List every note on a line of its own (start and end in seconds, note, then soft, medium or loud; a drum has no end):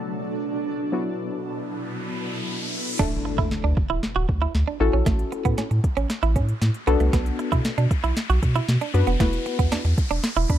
0.00 0.90 B2 medium
0.00 2.95 F#3 medium
0.00 0.62 A3 medium
0.00 0.63 B3 medium
0.00 0.63 D4 medium
0.00 0.90 D4 medium
0.00 0.63 F#4 medium
0.00 0.89 A4 medium
0.92 2.97 B2 medium
0.92 2.95 F#3 medium
0.92 2.95 B3 medium
0.92 2.97 E4 medium
0.92 2.96 E4 medium
0.92 2.96 F#4 medium
0.92 2.97 B4 medium
0.92 riser medium
2.99 3.17 D1 loud
2.99 3.66 A3 medium
2.99 3.66 D4 medium
2.99 3.10 D4 medium
2.99 3.66 E4 medium
2.99 3.66 A4 medium
2.99 kick loud
2.99 snare medium
2.99 crash medium
2.99 impact medium
2.99 riser medium
3.25 muted clean electric guitar stroke soft
3.38 3.47 D2 loud
3.38 3.49 E4 medium
3.38 kick medium
3.51 3.56 D2 soft
3.51 snare medium
3.64 3.73 D2 medium
3.64 3.75 D4 medium
3.77 muted clean electric guitar stroke soft
3.77 kick medium
3.90 3.99 D1 medium
3.90 4.01 E4 medium
4.03 snare medium
4.16 4.25 D1 loud
4.16 4.26 F#4 medium
4.29 4.46 D2 loud
4.29 muted clean electric guitar stroke soft
4.29 kick medium
4.42 4.52 E4 medium
4.55 4.63 D2 loud
4.55 snare medium
4.68 4.78 D4 medium
4.80 4.89 A1 loud
4.80 5.63 C#4 medium
4.80 5.63 E4 medium
4.80 5.63 F#4 medium
4.80 5.63 A4 loud
4.80 muted clean electric guitar stroke soft
4.93 5.02 A#1 medium
4.93 5.04 C#4 medium
5.06 5.24 A1 loud
5.06 5.17 A3 medium
5.06 kick loud
5.06 snare medium
5.06 closed hi-hat medium
5.19 closed hi-hat medium
5.32 muted clean electric guitar stroke soft
5.32 closed hi-hat medium
5.45 5.54 A2 loud
5.45 5.56 B3 medium
5.45 kick medium
5.45 closed hi-hat medium
5.58 5.63 A2 soft
5.58 5.69 C#4 medium
5.58 snare medium
5.58 closed hi-hat medium
5.71 5.80 A2 loud
5.71 muted clean electric guitar stroke soft
5.71 closed hi-hat soft
5.84 kick medium
5.84 closed hi-hat medium
5.97 6.06 A1 medium
5.97 6.08 C#4 medium
5.97 closed hi-hat soft
6.10 muted clean electric guitar stroke soft
6.10 snare medium
6.10 closed hi-hat loud
6.23 6.37 A1 loud
6.23 6.33 E4 medium
6.23 closed hi-hat medium
6.36 6.53 A2 loud
6.36 6.46 C#4 medium
6.36 kick medium
6.36 closed hi-hat medium
6.49 closed hi-hat medium
6.62 6.70 A2 loud
6.62 muted clean electric guitar stroke soft
6.62 snare medium
6.62 closed hi-hat medium
6.74 closed hi-hat medium
6.87 6.96 B1 loud
6.87 7.70 B3 medium
6.87 6.98 B3 medium
6.87 7.70 D4 medium
6.87 7.70 F#4 medium
6.87 7.70 A4 loud
6.87 closed hi-hat medium
7.00 7.09 C2 loud
7.00 7.11 A3 medium
7.00 closed hi-hat medium
7.13 7.31 B1 loud
7.13 7.24 B3 medium
7.13 kick loud
7.13 snare medium
7.13 closed hi-hat medium
7.26 closed hi-hat medium
7.39 muted clean electric guitar stroke soft
7.39 closed hi-hat medium
7.52 7.61 B2 loud
7.52 7.63 E4 medium
7.52 kick medium
7.52 closed hi-hat soft
7.65 7.70 B2 soft
7.65 snare medium
7.65 closed hi-hat medium
7.78 7.87 B2 loud
7.78 7.89 D4 medium
7.78 closed hi-hat medium
7.91 muted clean electric guitar stroke soft
7.91 kick medium
7.91 closed hi-hat medium
8.04 8.13 B1 medium
8.04 8.14 E4 medium
8.04 closed hi-hat soft
8.17 snare medium
8.17 closed hi-hat medium
8.30 8.38 B1 loud
8.30 8.40 F#4 medium
8.30 closed hi-hat medium
8.43 8.60 B2 loud
8.43 muted clean electric guitar stroke soft
8.43 kick medium
8.43 closed hi-hat medium
8.55 8.66 E4 medium
8.55 closed hi-hat medium
8.68 8.77 B2 loud
8.68 snare medium
8.68 closed hi-hat medium
8.81 8.92 D4 medium
8.81 closed hi-hat medium
8.94 9.03 F#2 loud
8.94 9.11 B3 medium
8.94 9.11 D4 medium
8.94 9.11 F#4 medium
8.94 9.11 B4 medium
8.94 muted clean electric guitar stroke soft
8.94 closed hi-hat medium
9.07 9.16 F1 medium
9.07 9.18 B3 medium
9.07 closed hi-hat medium
9.20 9.38 E1 loud
9.20 9.31 A3 medium
9.20 9.86 B3 medium
9.20 9.86 E4 medium
9.20 9.87 F#4 medium
9.20 9.87 B4 medium
9.20 kick loud
9.20 snare medium
9.20 closed hi-hat medium
9.33 closed hi-hat medium
9.46 muted clean electric guitar stroke soft
9.46 closed hi-hat medium
9.59 9.68 E2 medium
9.59 9.70 B3 medium
9.59 kick medium
9.59 closed hi-hat soft
9.72 9.77 E2 soft
9.72 9.83 D4 medium
9.72 snare medium
9.72 closed hi-hat medium
9.85 9.94 E2 loud
9.85 muted clean electric guitar stroke soft
9.85 closed hi-hat soft
9.98 kick medium
9.98 closed hi-hat medium
10.11 10.19 E1 medium
10.11 10.21 D4 medium
10.11 closed hi-hat soft
10.23 muted clean electric guitar stroke soft
10.23 snare medium
10.23 closed hi-hat medium
10.36 10.45 E1 loud
10.36 10.47 E4 medium
10.36 closed hi-hat medium
10.49 10.58 E2 loud
10.49 10.58 D4 medium
10.49 10.58 B5 medium
10.49 kick medium
10.49 closed hi-hat medium